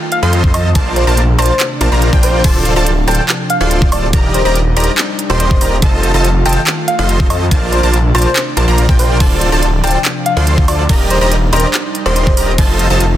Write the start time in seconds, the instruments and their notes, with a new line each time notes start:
Already playing: analog synth pad D#3 A3 F4
0.12 soft synth lead F5, closed hi-hat
0.23 detuned saw bass F2, supersaw synth F4 A4 C5 D#5 C6, soft synth lead F5, synth pluck C6
0.33 closed hi-hat
0.44 kick
0.54 detuned saw bass F2, supersaw synth F4 A4 C5 D#5 A5, soft synth lead D#5, synth pluck A5, open hi-hat, high woodblock
0.65 soft synth lead D#5
0.75 detuned saw bass A#1, analog synth pad C3 D4, supersaw synth F4 A#4 C5 D5 A5, synth pluck A5, kick, closed hi-hat
0.96 soft synth lead C5, closed hi-hat
1.07 detuned saw bass A#1, supersaw synth F4 A#4 C5 D5 A5, synth pluck A5
1.17 closed hi-hat
1.39 detuned saw bass A#1, supersaw synth F4 A#4 C5 D5 A5, soft synth lead C5, synth pluck A5, closed hi-hat, high woodblock
1.42 closed hi-hat
1.46 soft synth lead C5, closed hi-hat
1.60 clap, closed hi-hat, swell
1.81 detuned saw bass A#1, supersaw synth F4 A#4 C5 D5 A5, synth pluck A5, closed hi-hat
1.92 detuned saw bass A#1, supersaw synth F4 A#4 C5 D5 A#5, synth pluck A#5
2.02 closed hi-hat
2.13 detuned saw bass A#1, supersaw synth F4 A#4 C5 D5 G5, synth pluck G5, kick
2.23 soft synth lead C5, open hi-hat
2.44 detuned saw bass D1, analog synth pad F3, supersaw synth F4 A4 C5 D5 A5, synth pluck A5, kick, closed hi-hat, crash
2.65 closed hi-hat
2.76 detuned saw bass D1, supersaw synth F4 A4 C5 D5 A5, synth pluck A5
2.86 closed hi-hat
3.07 detuned saw bass D1, supersaw synth F4 A4 C5 D5 A5, soft synth lead G5, synth pluck A5, closed hi-hat
3.11 closed hi-hat
3.15 closed hi-hat
3.19 soft synth lead G5
3.29 clap, closed hi-hat
3.50 soft synth lead F5, closed hi-hat
3.61 detuned saw bass D1, supersaw synth F4 A4 C5 D5 C6, soft synth lead F5, synth pluck C6
3.71 closed hi-hat
3.82 kick
3.92 detuned saw bass D1, supersaw synth F4 A4 C5 D5 A5, soft synth lead D5, synth pluck A5, open hi-hat, high woodblock
4.03 soft synth lead D5
4.13 detuned saw bass D#1, analog synth pad G3 D4 D#4, supersaw synth G4 A#4 D5 D#5 A#5, synth pluck A#5, kick, closed hi-hat
4.34 soft synth lead C5, closed hi-hat
4.45 detuned saw bass D#1, supersaw synth G4 A#4 D5 D#5 A#5, soft synth lead C5, synth pluck A#5
4.55 closed hi-hat
4.77 detuned saw bass D#1, supersaw synth G4 A#4 D5 D#5 A#5, soft synth lead C5, synth pluck A#5, closed hi-hat
4.80 closed hi-hat
4.84 closed hi-hat
4.98 clap, closed hi-hat
5.19 closed hi-hat
5.30 detuned saw bass D#1, supersaw synth G4 A#4 D5 D#5 C6, soft synth lead C5, synth pluck C6
5.40 soft synth lead C5, closed hi-hat
5.51 kick
5.61 detuned saw bass D#1, supersaw synth G4 A#4 D5 D#5 A#5, synth pluck A#5, open hi-hat
5.82 detuned saw bass F1, analog synth pad D#3 A3 F4, supersaw synth F4 A4 C5 D#5 A5, synth pluck A5, kick, closed hi-hat
6.03 closed hi-hat
6.14 detuned saw bass F1, supersaw synth F4 A4 C5 D#5 A5, synth pluck A5
6.24 closed hi-hat
6.46 detuned saw bass F1, supersaw synth F4 A4 C5 D#5 A5, soft synth lead G5, synth pluck A5, closed hi-hat
6.49 closed hi-hat
6.53 soft synth lead G5, closed hi-hat
6.67 clap, closed hi-hat
6.88 soft synth lead F5, closed hi-hat
6.99 detuned saw bass F1, supersaw synth F4 A4 C5 D#5 C6, soft synth lead F5, synth pluck C6
7.09 closed hi-hat
7.20 kick
7.30 detuned saw bass F2, supersaw synth F4 A4 C5 D#5 A5, soft synth lead D#5, synth pluck A5, open hi-hat, high woodblock
7.41 soft synth lead D#5
7.51 detuned saw bass A#1, analog synth pad C3 D4, supersaw synth F4 A#4 C5 D5 A5, synth pluck A5, kick, closed hi-hat
7.72 soft synth lead C5, closed hi-hat
7.83 detuned saw bass A#1, supersaw synth F4 A#4 C5 D5 A5, synth pluck A5
7.94 closed hi-hat
8.15 detuned saw bass A#1, supersaw synth F4 A#4 C5 D5 A5, soft synth lead C5, synth pluck A5, closed hi-hat, high woodblock
8.18 closed hi-hat
8.22 soft synth lead C5, closed hi-hat
8.36 clap, closed hi-hat
8.57 detuned saw bass A#1, supersaw synth F4 A#4 C5 D5 A5, synth pluck A5, closed hi-hat
8.68 detuned saw bass A#1, supersaw synth F4 A#4 C5 D5 A#5, synth pluck A#5
8.78 closed hi-hat
8.89 detuned saw bass A#1, supersaw synth F4 A#4 C5 D5 G5, synth pluck G5, kick
8.99 soft synth lead C5, open hi-hat
9.20 detuned saw bass D1, analog synth pad F3, supersaw synth F4 A4 C5 D5 A5, synth pluck A5, kick, closed hi-hat, crash
9.41 closed hi-hat
9.52 detuned saw bass D1, supersaw synth F4 A4 C5 D5 A5, synth pluck A5
9.62 closed hi-hat
9.84 detuned saw bass D1, supersaw synth F4 A4 C5 D5 A5, soft synth lead G5, synth pluck A5, closed hi-hat
9.87 closed hi-hat
9.91 closed hi-hat
9.95 soft synth lead G5
10.05 clap, closed hi-hat
10.26 soft synth lead F5, closed hi-hat
10.37 detuned saw bass D2, supersaw synth F4 A4 C5 D5 C6, soft synth lead F5, synth pluck C6
10.47 closed hi-hat
10.58 kick
10.68 detuned saw bass D2, supersaw synth F4 A4 C5 D5 A5, soft synth lead D5, synth pluck A5, open hi-hat, high woodblock
10.79 soft synth lead D5
10.89 detuned saw bass D#1, analog synth pad G3 D4 D#4, supersaw synth G4 A#4 D5 D#5 A#5, synth pluck A#5, kick, closed hi-hat, crash
11.10 soft synth lead C5, closed hi-hat
11.21 detuned saw bass D#1, supersaw synth G4 A#4 D5 D#5 A#5, soft synth lead C5, synth pluck A#5
11.32 closed hi-hat
11.53 detuned saw bass D#1, supersaw synth G4 A#4 D5 D#5 A#5, soft synth lead C5, synth pluck A#5, closed hi-hat
11.56 closed hi-hat
11.60 closed hi-hat
11.74 clap, closed hi-hat
11.95 closed hi-hat
12.06 detuned saw bass D#1, supersaw synth G4 A#4 D5 D#5 C6, soft synth lead C5, synth pluck C6
12.16 soft synth lead C5, closed hi-hat
12.27 kick
12.37 detuned saw bass D#1, supersaw synth G4 A#4 D5 D#5 A#5, synth pluck A#5, open hi-hat
12.58 detuned saw bass F1, analog synth pad D#3 A3 F4, supersaw synth F4 A4 C5 D#5 A5, synth pluck A5, kick, closed hi-hat, crash
12.79 closed hi-hat
12.90 detuned saw bass F1, supersaw synth F4 A4 C5 D#5 A5, synth pluck A5
13.00 closed hi-hat